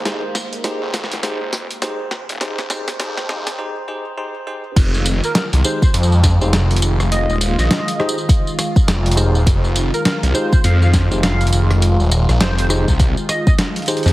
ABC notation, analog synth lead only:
X:1
M:4/4
L:1/16
Q:"Swing 16ths" 1/4=102
K:Fm
V:1 name="Analog synth lead"
z16 | z16 | z3 B B z c c z8 | e z2 e4 z8 z |
z3 B B z c c f f z2 f z3 | z4 c c z4 e e z4 |]